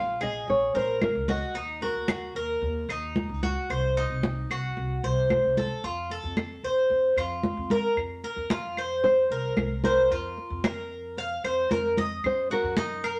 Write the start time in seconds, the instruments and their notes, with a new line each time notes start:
Already playing: upright bass A#1, cuban tres F4, nylon-string guitar F5
0.21 upright bass A#1, cuban tres G#4, nylon-string guitar D#5, high conga, claves
0.48 upright bass A#1, nylon-string guitar C#5, high conga
0.74 upright bass A#1, cuban tres A#4, nylon-string guitar C5, high conga
1.01 nylon-string guitar A#4, high conga, claves
1.15 upright bass C#2
1.28 cuban tres F#4, nylon-string guitar D#5, high conga
1.54 upright bass D#2, cuban tres D#4, high conga
1.81 cuban tres F#4, nylon-string guitar A#4, high conga
1.95 upright bass D#2
2.08 high conga, claves
2.35 upright bass D#2, cuban tres A#4
2.61 upright bass D#2, high conga
2.89 upright bass D#2, cuban tres D#4, high conga, claves
3.16 high conga
3.29 upright bass C#2
3.43 cuban tres F#4, high conga
3.70 upright bass C2, cuban tres C5, high conga, claves
3.97 cuban tres D#4, high conga
4.10 upright bass C2
4.23 high conga
4.50 upright bass C2, cuban tres F#4, high conga, claves
4.77 upright bass C2, high conga
5.03 upright bass C2, cuban tres C5, high conga
5.30 high conga, claves
5.44 upright bass C2
5.57 cuban tres A4, high conga
5.84 upright bass F2, cuban tres F4, high conga
6.10 cuban tres A4, high conga
6.24 upright bass F2
6.37 high conga, claves
6.63 upright bass F2, cuban tres C5
6.90 upright bass F2, high conga
7.16 upright bass F2, cuban tres F4, high conga, claves
7.43 high conga
7.57 upright bass F2
7.70 cuban tres A#4, nylon-string guitar A#4, high conga
7.96 upright bass F2, high conga, claves
8.24 cuban tres A#4, high conga
8.36 upright bass F2
8.50 cuban tres F4, high conga
8.77 cuban tres C5, high conga, claves
9.04 nylon-string guitar C5, high conga
9.30 upright bass C2, cuban tres A#4, high conga
9.56 upright bass C2, high conga, claves
9.84 nylon-string guitar A#4, cuban tres C5, high conga
10.10 upright bass F2, cuban tres F4, high conga
10.37 high conga
10.50 upright bass F2
10.64 cuban tres A#4, high conga, claves
11.17 cuban tres F5, high conga
11.44 upright bass F2, cuban tres C5, high conga, claves
11.71 upright bass F2, cuban tres A#4, high conga
11.97 cuban tres D#5, high conga
12.24 upright bass F#2, nylon-string guitar C5, high conga, claves
12.50 cuban tres F#4, nylon-string guitar A#4, high conga
12.63 upright bass F#2
12.77 cuban tres D#4, high conga
13.03 cuban tres A#4, high conga, claves